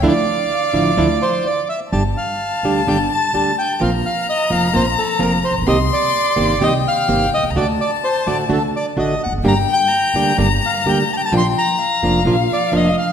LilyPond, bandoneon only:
\new Staff \with { instrumentName = "Bandoneon" } { \time 4/4 \key d \minor \tempo 4 = 128 d''2~ d''8 c''8 d''8 e''8 | \key g \minor a''8 f''4. g''8 a''4 g''8 | f''8 f''8 ees''8 f''8 c''8 a'8 bes'8 c''8 | ees''8 d''4. ees''8 f''4 ees''8 |
d''8 d''8 c''8 d''8 a'8 d''8 ees''8 fis''8 | bes''8 g''4. r8 f''8 g''8 a''32 g''32 a''16 | c'''8 bes''4. r8 d''8 ees''8 f''8 | }